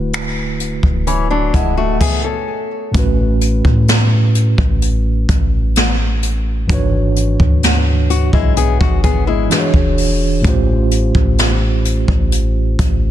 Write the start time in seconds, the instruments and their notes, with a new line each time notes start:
Already playing: 808-style bass D1, tine electric piano D3 A3 E4 F#4 B4
0.13 finger snap, closed hi-hat
0.60 closed hi-hat
0.83 808-style bass D1, kick
1.07 nylon-string guitar E3 C#4, tine electric piano B5, closed hi-hat
1.30 nylon-string guitar F#3 D4, tine electric piano A5
1.54 808-style bass D1, nylon-string guitar G#3 E4, tine electric piano F#5, kick, closed hi-hat
1.77 nylon-string guitar A3 F#4, tine electric piano E5
2.01 nylon-string guitar B3 G#4, kick, crash
2.24 nylon-string guitar C#4 A4
2.91 808-style bass A1, tine electric piano A2 A3 C#4, kick, closed hi-hat
2.97 tine electric piano F#4 B4
3.41 closed hi-hat
3.65 808-style bass A2, kick
3.88 snare, closed hi-hat
4.35 closed hi-hat
4.58 808-style bass A1, kick
4.82 closed hi-hat
5.29 808-style bass A1, kick, closed hi-hat
5.76 snare, closed hi-hat
6.23 closed hi-hat
6.66 808-style bass G#1, tine electric piano G2 E3 D4, kick, closed hi-hat
6.71 tine electric piano G#2 F#4 B4 C#5
7.16 closed hi-hat
7.40 808-style bass D2, kick
7.63 snare, closed hi-hat
8.10 nylon-string guitar F#4, closed hi-hat
8.33 808-style bass B1, nylon-string guitar G#3 E4, kick
8.57 nylon-string guitar B3 G#4, closed hi-hat
8.80 808-style bass G#1, nylon-string guitar F#4, kick
9.04 nylon-string guitar B3 G#4, kick, closed hi-hat
9.27 nylon-string guitar G#3 E4
9.49 tine electric piano E3 D4 F#4 G#4 B4, snare, closed hi-hat
9.60 tine electric piano C#5
9.74 808-style bass E1, kick
9.98 open hi-hat
10.41 808-style bass A1, tine electric piano A2 A3 C#4, kick, closed hi-hat
10.46 tine electric piano F4 G4 C5
10.91 closed hi-hat
11.15 808-style bass A1, kick
11.38 snare, closed hi-hat
11.85 closed hi-hat
12.08 808-style bass A1, kick
12.32 closed hi-hat
12.79 808-style bass A1, kick, closed hi-hat